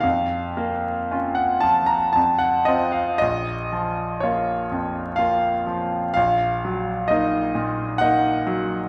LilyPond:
<<
  \new Staff \with { instrumentName = "Grand piano" } { \time 3/4 \key bes \minor \tempo 4 = 61 f''4~ f''16 ges''16 a''16 bes''16 a''16 ges''16 ees''16 f''16 | ees''4 des''4 f''4 | f''4 ees''4 ges''4 | }
  \new Staff \with { instrumentName = "Grand piano" } { \time 3/4 \key bes \minor f,8 bes8 <des' f'>8 f8 f,8 <c' f'>8 | bes,,8 f8 <bes f'>8 f,8 <bes f'>8 f8 | bes,,8 ges8 <bes ees'>8 bes,8 <bes ees'>8 ges8 | }
>>